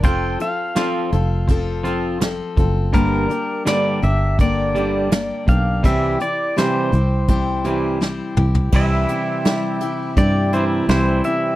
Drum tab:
CC |----------------|----------------|----------------|x---------------|
HH |x-x-x-x-x-x-x-x-|x-x-x-x-x-x-x-x-|x-x-x-x-x-x-----|--x-x-x-x-x-x-x-|
SD |----o-------o---|----o-------o---|----o-------o---|----o-------o---|
T2 |----------------|----------------|--------------o-|----------------|
FT |----------------|----------------|---------------o|----------------|
BD |o-------o-----o-|o-------o-----o-|o-------o-------|o-------o-------|